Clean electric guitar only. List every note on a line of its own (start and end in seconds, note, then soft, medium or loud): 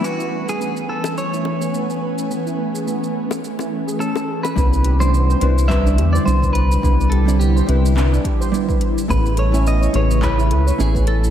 0.04 0.49 F#4 medium
0.49 0.89 G#4 medium
0.89 1.15 A4 medium
1.18 3.96 C#5 loud
4.00 4.43 A4 medium
4.43 4.96 B4 medium
5.00 5.68 C5 loud
5.68 6.12 E5 loud
6.13 6.25 D5 medium
6.26 6.53 C5 medium
6.53 7.12 B4 loud
7.10 7.37 A4 medium
7.39 8.49 G4 medium
9.10 9.39 B4 loud
9.39 9.65 C#5 loud
9.68 9.95 D#5 loud
9.96 10.23 C#5 loud
10.23 10.81 B4 loud
10.80 11.07 G#4 medium
11.08 11.30 A4 medium